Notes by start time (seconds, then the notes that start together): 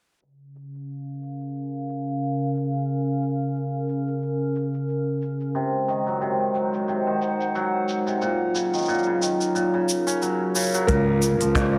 0.22 C#3, shaker
0.41 C#4
0.55 shaker
0.66 F5
0.74 shaker
0.89 shaker
1.06 A#4
1.22 shaker
1.41 shaker
1.55 shaker
1.89 shaker
2.07 shaker
2.22 shaker
2.56 shaker
2.74 shaker
2.89 shaker
3.22 shaker
3.41 shaker
3.55 shaker
3.89 shaker
4.08 shaker
4.22 shaker
4.55 shaker
4.74 shaker
4.89 shaker
5.22 shaker
5.41 shaker
5.55 C3 G#3, shaker
5.85 D#3 C5, shaker
6.07 F#3, shaker
6.21 C3, shaker
6.40 D#3
6.46 D#4
6.55 F#3, shaker
6.70 F#5, shaker
6.88 C3, shaker
7.07 D#3
7.22 shaker
7.41 shaker
7.55 F#3, shaker
7.89 shaker
8.07 C3, shaker
8.22 A#2 F#3, shaker
8.55 C#3, shaker
8.74 D#3, shaker
8.78 shaker
8.82 shaker
8.85 A#2, shaker
8.89 shaker
8.98 shaker
9.03 C#3, shaker
9.17 A#4
9.22 D#3, shaker
9.41 shaker
9.55 A#2, shaker
9.74 C#3
9.89 shaker
10.07 C#4, shaker
10.22 F#3, shaker
10.55 C#3, shaker
10.58 shaker
10.61 shaker
10.63 shaker
10.66 shaker
10.69 shaker
10.72 F#3, shaker
10.74 shaker
10.87 C#2 A#2 C#3 A#4, kick, open hi-hat, shaker
11.22 C#3, open hi-hat, shaker
11.40 C#2 F3, open hi-hat, shaker
11.48 F5
11.55 A#2, kick, snare, open hi-hat, shaker
11.70 C#4
11.74 C#3